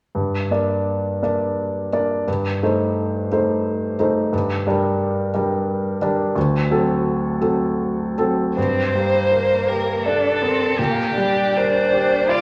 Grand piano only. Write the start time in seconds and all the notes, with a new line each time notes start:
0.15 G2
0.51 A#3 D4 D5
1.22 A#3 D4 D5
1.93 A#3 D4 D5
2.27 G2
2.63 A3 D#4 C5
3.32 A3 D#4 C5
3.99 A3 D#4 C5
4.33 G2
4.67 G3 D4 A#4
5.34 G3 D4 A#4
6.01 G3 D4 A#4
6.36 D2
6.71 F#3 C4 A4
7.41 F#3 C4 A4
8.18 F#3 C4 A4
8.57 G2
8.95 G3
9.32 A#4
9.69 G4
10.06 D5
10.42 A#4
10.79 A#2
11.18 G3
11.57 A#4
11.93 G4
12.29 D5